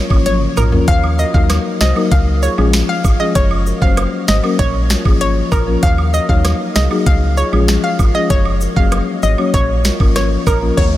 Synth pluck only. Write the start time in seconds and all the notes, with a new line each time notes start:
0.26 C#5
0.57 A#4
0.88 F5
1.19 D#5
1.34 F5
1.81 D#5
2.12 F5
2.43 C#5
2.89 F5
3.20 D#5
3.35 C#5
3.82 F5
4.28 D#5
4.59 C#5
5.21 C#5
5.52 A#4
5.83 F5
6.14 D#5
6.29 F5
6.76 D#5
7.06 F5
7.37 C#5
7.84 F5
8.15 D#5
8.30 C#5
8.77 F5
9.23 D#5
9.54 C#5
10.16 C#5
10.47 A#4
10.77 C#5